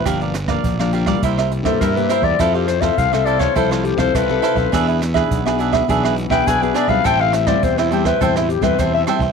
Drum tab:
HH |xxx-x-x-x-x-xxx-|x-xxx-x-xxxxx-xx|xxx-x-x-x-x-xxx-|x-xxx-x-xxxxx-xx|
SD |r-rr-r-r-r-rr-r-|r-rr-r-r-r-rr-r-|r-rr-r-r-r-rr-r-|r-rr-r-r-r-rr-r-|
BD |o--oo--oo--oo--o|o--oo--oo--oo--o|o--oo--oo--oo--o|o--oo--oo--oo--o|